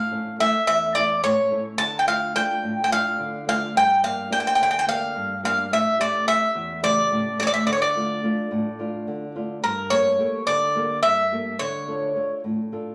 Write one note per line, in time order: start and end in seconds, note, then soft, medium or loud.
0.00 0.38 A2 medium
0.00 0.36 F5 medium
0.11 0.38 A3 soft
0.11 0.39 C#4 soft
0.11 0.39 E4 medium
0.39 0.84 A3 medium
0.39 0.84 C#4 soft
0.39 0.85 E4 medium
0.39 0.66 E5 medium
0.67 1.22 E2 medium
0.67 0.96 E5 medium
0.95 1.40 A3 medium
0.95 1.40 C#4 soft
0.95 1.41 E4 medium
0.95 1.21 D5 medium
1.24 1.78 A2 medium
1.24 1.62 C#5 medium
1.51 1.73 A3 soft
1.51 1.73 C#4 soft
1.51 1.74 E4 medium
1.78 2.33 D3 medium
1.78 1.99 A5 loud
1.99 2.07 G5 medium
2.07 2.34 A3 soft
2.07 2.34 D4 soft
2.07 2.35 F4 medium
2.07 2.35 F5 medium
2.35 2.80 A3 soft
2.35 2.80 D4 soft
2.35 2.80 F4 medium
2.35 2.83 G5 medium
2.63 3.17 A2 medium
2.84 2.91 G5 medium
2.90 3.35 A3 medium
2.90 3.35 D4 soft
2.90 3.36 F4 medium
2.90 3.44 F5 medium
3.18 3.73 D3 medium
3.47 3.69 A3 soft
3.47 3.70 D4 soft
3.47 3.70 F4 medium
3.47 3.74 F5 medium
3.75 4.29 G2 medium
3.75 4.04 G5 medium
4.03 4.29 A#3 soft
4.03 4.29 D4 soft
4.03 4.29 G4 medium
4.03 4.29 F5 medium
4.30 4.75 A#3 medium
4.30 4.75 D4 medium
4.30 4.75 G4 medium
4.30 4.39 G5 medium
4.40 4.46 G5 medium
4.47 4.54 G5 medium
4.55 5.13 D3 medium
4.55 4.61 G5 medium
4.63 4.69 G5 medium
4.71 4.77 G5 medium
4.79 4.85 G5 medium
4.86 5.31 A#3 medium
4.86 5.32 D4 soft
4.86 5.32 G4 medium
4.86 5.40 F5 loud
5.15 5.69 G2 medium
5.43 5.65 A#3 soft
5.43 5.66 D4 soft
5.43 5.66 G4 medium
5.43 5.73 F5 medium
5.71 6.25 A2 medium
5.71 6.00 E5 medium
5.99 6.25 A3 soft
5.99 6.26 C#4 soft
5.99 6.27 G4 medium
5.99 6.28 D5 medium
6.27 6.71 A3 medium
6.27 6.72 C#4 medium
6.27 6.72 G4 medium
6.27 6.79 E5 medium
6.55 7.09 E2 medium
6.82 7.28 C#3 soft
6.82 7.27 A3 medium
6.82 7.28 G4 medium
6.82 7.38 D5 medium
7.11 7.65 A2 medium
7.39 7.61 A3 medium
7.39 7.61 C#4 soft
7.39 7.62 G4 medium
7.39 7.46 C#5 medium
7.39 7.42 D5 medium
7.47 7.53 D5 medium
7.54 7.66 E5 medium
7.67 8.21 D3 medium
7.67 7.72 D5 medium
7.73 7.80 C#5 medium
7.82 9.31 D5 medium
7.95 8.22 A3 soft
7.95 8.23 D4 soft
7.95 8.23 F4 medium
8.23 8.68 A3 medium
8.23 8.68 D4 soft
8.23 8.68 F4 medium
8.51 9.05 A2 medium
8.79 9.24 A3 medium
8.79 9.24 D4 soft
8.79 9.24 F4 medium
9.07 9.61 D3 medium
9.35 9.57 A3 soft
9.35 9.58 D4 soft
9.35 9.58 F4 medium
9.62 10.17 G2 medium
9.62 9.89 A#4 medium
9.90 10.18 A#3 soft
9.90 10.18 G4 soft
9.90 10.18 A4 soft
9.90 10.43 C#5 medium
10.19 10.64 A#3 medium
10.19 10.64 G4 soft
10.19 10.64 A4 medium
10.47 11.02 D3 medium
10.47 10.99 D5 medium
10.75 11.20 A#3 soft
10.75 11.20 G4 soft
10.75 11.21 A4 medium
11.03 11.58 G2 medium
11.03 11.59 E5 medium
11.32 11.54 A#3 soft
11.32 11.54 G4 soft
11.32 11.54 A4 soft
11.59 12.14 D3 medium
11.59 12.39 C#5 medium
11.88 12.14 D4 soft
11.88 12.15 F4 soft
11.88 12.15 A4 medium
12.16 12.60 D4 medium
12.16 12.61 F4 soft
12.16 12.61 A4 medium
12.44 12.95 A2 medium
12.72 12.95 D4 medium
12.72 12.95 F4 soft
12.72 12.95 A4 medium